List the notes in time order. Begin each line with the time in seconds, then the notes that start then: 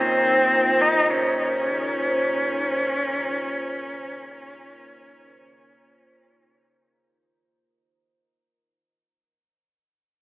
Already playing: D#2 C#3 D#3 A#3 C4 D#4 F4 C5
0.81 D#4
1.10 C#4